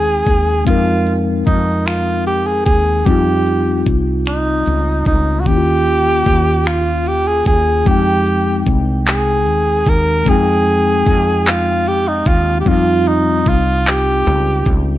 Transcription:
Already playing: fretless electric bass D#2, tine electric piano G#3 C4 D#4 G5, tenor saxophone G#4
0.26 fretless electric bass D#2, kick, closed hi-hat
0.65 fretless electric bass F2, tine electric piano G#3 C4 D#4, tenor saxophone F4, kick, closed hi-hat
0.70 tine electric piano A#4
1.07 closed hi-hat
1.47 fretless electric bass F2, tenor saxophone D#4, kick, closed hi-hat
1.86 tenor saxophone F4, finger snap, closed hi-hat
2.26 tenor saxophone G4, closed hi-hat
2.46 tenor saxophone G#4
2.65 fretless electric bass D#2, tenor saxophone G#4, kick, closed hi-hat
3.05 fretless electric bass F2, tine electric piano G3 C4 D#4, tenor saxophone G4, kick, closed hi-hat
3.11 tine electric piano F4
3.46 closed hi-hat
3.86 fretless electric bass C2, kick, closed hi-hat
4.26 tenor saxophone D#4, finger snap, closed hi-hat
4.66 fretless electric bass C#2, closed hi-hat
5.05 fretless electric bass C#2, tenor saxophone D#4, kick, closed hi-hat
5.40 tenor saxophone F#4
5.45 fretless electric bass D#2, tine electric piano D#3 A#3, tenor saxophone G4, kick, closed hi-hat
5.49 tine electric piano C#4 E4
5.57 tine electric piano F4
5.86 closed hi-hat
6.26 fretless electric bass D#2, kick, closed hi-hat
6.65 tenor saxophone F4, finger snap, closed hi-hat
7.06 tenor saxophone G4, closed hi-hat
7.27 tenor saxophone G#4
7.45 fretless electric bass D#2, tenor saxophone G#4, kick, closed hi-hat
7.85 fretless electric bass F2, tine electric piano G#3 C4 D#4, tenor saxophone G4, kick, closed hi-hat
7.91 tine electric piano G5
8.26 closed hi-hat
8.66 fretless electric bass C2, kick, closed hi-hat
9.06 tenor saxophone G#4, clap, closed hi-hat
9.46 fretless electric bass D#2, closed hi-hat
9.86 fretless electric bass D#2, tenor saxophone A#4, kick, closed hi-hat
10.25 fretless electric bass F2, tine electric piano G#3 C4 D#4, tenor saxophone G#4, kick, closed hi-hat
10.31 tine electric piano G5
10.66 closed hi-hat
11.06 fretless electric bass F2, kick, closed hi-hat
11.46 tenor saxophone F4, clap, closed hi-hat
11.86 tenor saxophone G4, closed hi-hat
12.08 tenor saxophone D#4
12.25 fretless electric bass D#2, tenor saxophone F4, kick, closed hi-hat
12.60 tenor saxophone G4
12.65 fretless electric bass F2, tine electric piano G3 C4, tenor saxophone F4, kick, closed hi-hat
12.69 tine electric piano D#4 F4
13.06 tenor saxophone D#4, closed hi-hat
13.46 fretless electric bass C2, tenor saxophone F4, kick, closed hi-hat
13.86 tenor saxophone G4, clap, closed hi-hat
14.26 fretless electric bass C#2, closed hi-hat
14.65 fretless electric bass C#2, kick, closed hi-hat

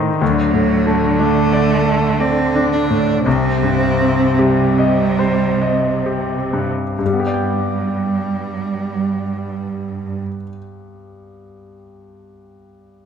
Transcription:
Already playing: cello section A2, grand piano A2 D#3 A3 D#4 A4 C5, harp A2 D#3 A3 D#4 A4 C5
0.21 grand piano D2, cello section D3, harp D3, cello F#3
0.54 grand piano A2, harp A3
0.86 grand piano A3, harp D4
1.18 cello A3, grand piano D4, harp D5
1.52 harp A4, grand piano D5
1.86 grand piano A4, harp D5
2.20 cello C4, harp A4, grand piano D5
2.55 harp D4, grand piano D4
2.73 cello D4
2.90 grand piano A2, harp A3
3.25 grand piano C2, cello section C3, harp C3, cello C4
3.63 grand piano G2, harp G3
4.00 harp C4, grand piano C4
4.38 cello G3, grand piano G4
4.78 grand piano D#5, harp D#5
5.19 grand piano C5, harp C5
5.62 grand piano D#5, harp D#5
6.06 harp C4, grand piano G4
6.53 grand piano G2, harp G3
6.99 grand piano G2, cello section G2, harp G2, cello G3
7.06 grand piano G3, harp G3
7.13 grand piano B3, harp B3
7.19 grand piano G4, harp G4
7.27 grand piano D5, harp D5
7.34 grand piano G5

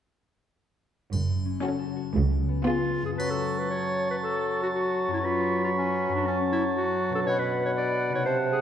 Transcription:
1.12 double bass section F#1, cello section F#2, harp F#2, triangle
1.29 harp C#3
1.45 harp C#4
1.62 viola section C#4, harp F#4, violin section F#4 A4
1.79 harp A4
1.96 harp F#4
2.13 double bass section C#2, cello section C#2, harp C#3
2.30 harp G#3
2.49 harp B3
2.66 viola section B3, clarinet F4, violin section F4 G#4, harp F4
2.84 harp G#4
3.01 harp F#2 F4
3.05 harp C#4, clarinet G#4
3.10 harp F#4
3.15 harp A4, clarinet B4, oboe A5
3.19 bassoon F#3, flute C#6, triangle
3.31 clarinet A4
3.58 clarinet B4
3.70 clarinet C#5
4.11 clarinet B4
4.23 clarinet A4
4.63 clarinet F#4
4.75 clarinet F#4
5.08 harp F#2
5.12 harp C#4, clarinet E4
5.17 harp G#4
5.21 harp B4, oboe B5
5.26 clarinet F4
5.64 clarinet F4
5.77 clarinet C#4
6.09 harp F#2
6.13 harp C#4, clarinet D4
6.18 harp F#4
6.22 harp A4
6.26 clarinet C#4, oboe A5
6.52 clarinet E4
6.76 clarinet F#4
7.10 harp B2
7.14 harp D4, clarinet A4
7.19 harp F#4
7.23 bassoon B2, harp B4, clarinet C#5
7.28 oboe F#5, flute B5
7.39 clarinet B4
7.65 clarinet C#5
7.77 clarinet D5
8.09 harp C3
8.14 harp D#4 F#4, clarinet C#5
8.23 bassoon C3, harp A4, clarinet C5
8.27 flute A5
8.52 clarinet G#4

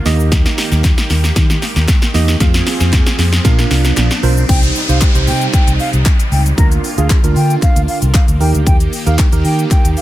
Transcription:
Already playing: supersaw synth A#3, riser
0.05 fingered electric bass D#2, supersaw synth D#3 G4, tine electric piano A#3 D#4 G4 D#5, snare, open hi-hat, shaker
0.20 shaker
0.32 kick, snare, closed hi-hat, shaker
0.45 snare, shaker
0.58 snare, open hi-hat, shaker
0.72 fingered electric bass D#2, snare, shaker
0.84 kick, snare, clap, closed hi-hat, shaker
0.98 snare, shaker
1.10 fingered electric bass D#2, snare, open hi-hat, shaker
1.24 snare, shaker
1.36 fingered electric bass D#3, kick, snare, closed hi-hat, shaker
1.50 snare, shaker
1.62 snare, open hi-hat, shaker
1.76 fingered electric bass D#2, snare, shaker
1.88 kick, snare, clap, closed hi-hat, shaker
2.02 snare, shaker
2.14 fingered electric bass E2, tine electric piano A#3 D#4 G4 D#5, snare, open hi-hat, shaker
2.28 snare, shaker
2.40 fingered electric bass F2, supersaw synth F3 C4 G#4, tine electric piano C4 F4 G#4 F5, kick, snare, closed hi-hat, shaker
2.54 snare, shaker
2.67 snare, open hi-hat, shaker
2.80 fingered electric bass F2, snare, shaker
2.93 kick, snare, clap, closed hi-hat, shaker
3.06 snare, shaker
3.19 fingered electric bass F2, snare, open hi-hat, shaker
3.33 snare, shaker
3.45 fingered electric bass A#2, supersaw synth F3 A#3 D4, tine electric piano D4 F4 A#4 F5, kick, snare, closed hi-hat, shaker
3.59 snare, shaker
3.71 fingered electric bass C2, snare, open hi-hat, shaker
3.84 snare, shaker
3.97 fingered electric bass A#1, snare, clap, closed hi-hat, shaker
4.11 snare, shaker
4.23 fingered electric bass B1, tine electric piano D4 F4 A#4 C5, open hi-hat, shaker
4.37 shaker
4.49 fingered electric bass C2, supersaw synth C3 G3 D#4, tine electric piano D#4 G4 C5, flute G5, kick, closed hi-hat, crash, downlifter, shaker
4.63 closed hi-hat, shaker
4.75 open hi-hat, shaker
4.89 fingered electric bass C2, tine electric piano D#4 G4 C5, flute F5, closed hi-hat, shaker
5.01 kick, clap, closed hi-hat, shaker
5.15 fingered electric bass C2, tine electric piano D#4 G4 C5, closed hi-hat, shaker
5.27 fingered electric bass C3, flute G5, open hi-hat, shaker
5.42 closed hi-hat, shaker
5.53 flute G5, kick, clap, closed hi-hat, shaker
5.67 fingered electric bass C2, closed hi-hat, shaker
5.79 flute F5, open hi-hat, shaker
5.93 fingered electric bass C2, closed hi-hat, shaker
6.06 kick, clap, closed hi-hat, shaker
6.20 closed hi-hat, shaker
6.32 fingered electric bass C#2, flute G5, open hi-hat, shaker
6.46 closed hi-hat, shaker
6.58 fingered electric bass D2, supersaw synth D3 A#3 F4, tine electric piano D4 F4 A#4, flute A#5, kick, closed hi-hat, shaker
6.72 closed hi-hat, shaker
6.84 open hi-hat, shaker
6.98 fingered electric bass D2, tine electric piano D4 F4 G#4, flute F5, closed hi-hat, shaker
7.10 kick, clap, closed hi-hat, shaker
7.24 fingered electric bass D2, tine electric piano D4 F4 A#4, closed hi-hat, shaker
7.36 fingered electric bass D3, flute G5, open hi-hat, shaker
7.50 closed hi-hat, shaker
7.62 flute F5, kick, clap, closed hi-hat, shaker
7.76 fingered electric bass D2, closed hi-hat, shaker
7.88 flute F5, open hi-hat, shaker
8.02 fingered electric bass C2, closed hi-hat, shaker
8.14 flute F5, kick, clap, closed hi-hat, shaker
8.28 fingered electric bass D2, closed hi-hat, shaker
8.40 fingered electric bass D#2, supersaw synth D#3 G4, tine electric piano D#4 G4 A#4, flute G5, open hi-hat, shaker
8.54 fingered electric bass D2, closed hi-hat, shaker
8.66 fingered electric bass D#2, flute G5, kick, closed hi-hat, shaker
8.80 closed hi-hat, shaker
8.93 open hi-hat, shaker
9.06 fingered electric bass D#2, tine electric piano D#4 G4 A#4, flute F5, closed hi-hat, shaker
9.19 kick, clap, closed hi-hat, shaker
9.32 fingered electric bass D#2, tine electric piano D#4 G4 A#4, closed hi-hat, shaker
9.45 fingered electric bass D#3, flute G5, open hi-hat, shaker
9.59 closed hi-hat, shaker
9.71 flute G5, kick, clap, closed hi-hat, shaker
9.85 fingered electric bass D#2, closed hi-hat, shaker
9.97 flute F5, open hi-hat, shaker

